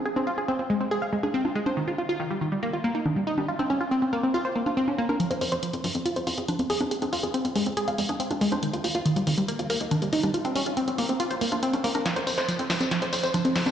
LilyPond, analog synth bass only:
\new Staff \with { instrumentName = "Analog synth bass" } { \clef bass \time 4/4 \key f \minor \tempo 4 = 140 r1 | r1 | r1 | r16 f,16 f,16 f,16 r16 f,16 g,16 f,16 r16 f,16 f,16 f,16 r16 f,16 f,16 f,16 |
r16 f,16 f,16 f,16 r16 f,16 g,16 f,16 r16 f,16 f,16 f,16 r16 f,16 f,16 f,16 | r16 ees,16 ees,16 ees,16 r16 ees,16 f,16 ees,16 r16 ees,16 ees,16 ees,16 r16 ees,16 ees,16 ees,16 | r16 bes,,16 bes,,16 bes,,16 r16 bes,,16 c,16 bes,,16 r16 bes,,16 c,16 bes,,16 r16 bes,,16 bes,,16 bes,,16 | r16 f,16 f,16 f,16 r16 f,16 g,16 f,16 r16 f,16 f,16 f,16 r16 f,16 f,16 f,16 | }